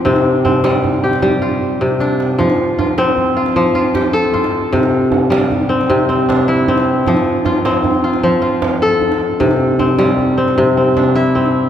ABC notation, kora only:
X:1
M:12/8
L:1/8
Q:3/8=103
K:F
V:1 name="Kora"
[CG]2 C3 G2 F3 D2- | D z F3 F2 F G A F2- | F z4 C2 C D E C2- | C z F3 F2 F2 A3 |
z2 C3 C2 C D E C2 |]
V:2 name="Kora" clef=bass
C,2 z G,2 z G,2 z C,2 z | F,2 z C2 z F,2 z A2 z | C,2 z G,2 z C,2 z E2 z | F,2 z C2 z F,2 z A2 z |
C,2 z G,2 z C,2 z E2 z |]